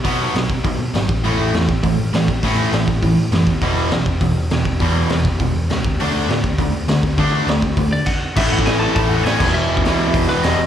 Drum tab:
CC |----------------|----------------|----------------|----------------|
HH |o---o---o---o---|o---o---o---o---|o---o---o---o---|o---o---o---o---|
SD |----o-------o---|----o-------o---|----o-------o---|----o-------o---|
BD |o-----o-o-----o-|------o-o-----o-|o-----o-o-----o-|o-----o-o-----o-|

CC |----------------|----------------|------------x---|x-------------x-|
HH |o---o---o---o---|o---o---o---o---|o---o---o-------|----o---o---o---|
SD |----o-------o---|----o-------o---|----o-----------|----o-------o---|
BD |o-----o-o-----o-|------o-o-----o-|o-----o-o---o---|o--o----o-----o-|

CC |----------------|
HH |----o---o---o---|
SD |----o-------o---|
BD |---o----o-------|